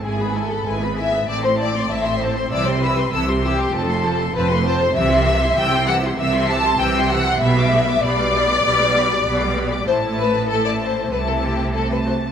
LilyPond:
<<
  \new Staff \with { instrumentName = "Violin section" } { \time 4/4 \key f \lydian \tempo 4 = 98 gis''16 b''16 gis''16 b''16 gis''16 b''16 gis''16 b''16 a''16 c'''16 a''16 c'''16 a''16 c'''16 a''16 c'''16 | e'''16 c'''16 e'''16 c'''16 e'''16 c'''16 e'''16 c'''16 a''16 c'''16 a''16 c'''16 a''16 c'''16 a''16 c'''16 | \key g \major e'''16 c'''16 e'''16 c'''16 e'''16 c'''16 e'''16 c'''16 e'''16 c'''16 e'''16 c'''16 e'''16 c'''16 e'''16 c'''16 | b''16 d'''16 b''16 d'''16 b''16 d'''16 b''16 d'''16 b''16 d'''16 b''16 d'''16 b''16 d'''16 b''16 d'''16 |
a''4 a''4 a''4 a''4 | }
  \new Staff \with { instrumentName = "Violin section" } { \time 4/4 \key f \lydian gis'8 a'8 b'8 e''8 d''16 c''16 d''8 e''8 c''8 | d''16 c''16 b'8 a'8 g'8 a'4 b'8 c''8 | \key g \major e''4 g''8 fis''8 e''8 a''8 g''8 fis''8 | e''4 d''2. |
c''8 b'8 a'16 d''16 c''8 b'16 a'16 g'8 a'16 b'16 c''8 | }
  \new Staff \with { instrumentName = "Viola section" } { \time 4/4 \key f \lydian << { e'16 gis'16 e'16 gis'16 e'16 gis'16 e'16 gis'16 e'16 c'16 e'16 c'16 e'16 c'16 e'16 c'16 | e'16 g'16 e'16 g'16 e'16 g'16 e'16 g'16 f'16 a'16 f'16 a'16 f'16 a'16 f'16 a'16 | \key g \major g'16 e'16 g'16 e'16 g'16 e'16 g'16 e'16 g'16 e'16 g'16 e'16 g'16 e'16 g'16 e'16 | g'16 b'16 g'16 b'16 g'16 b'16 g'16 b'16 g'16 b'16 g'16 b'16 g'16 b'16 g'16 b'16 |
e'4 e'4 e'4 e'8 fis'8 | } \\ { gis16 b16 gis16 b16 gis16 b16 gis16 b16 c'16 a16 c'16 a16 c'16 a16 c'16 a16 | e16 g16 e16 g16 e16 g16 e16 g16 c'16 a16 c'16 a16 c'16 a16 c'16 a16 | e16 g16 e16 g16 e16 g16 e16 g16 e16 g16 e16 g16 e16 g16 e16 g16 | b16 g16 b16 g16 b16 g16 b16 g16 b16 g16 b16 g16 b16 g16 b16 g16 |
a4 a4 a4 a4 | } >> }
  \new Staff \with { instrumentName = "Cello section" } { \clef bass \time 4/4 \key f \lydian gis,4 gis,4 a,4 a,4 | c4 c4 f,4 f,4 | \key g \major c4 c4 c4 c4 | b,4 b,4 b,4 b,4 |
a,2 c2 | }
  \new Staff \with { instrumentName = "Double bass section" } { \clef bass \time 4/4 \key f \lydian gis,,4 gis,,4 a,,4 a,,4 | c,4 c,4 f,,4 f,,4 | \key g \major c,4 c,4 c,4 c,4 | b,,4 b,,4 b,,4 b,,4 |
a,,2 c,2 | }
>>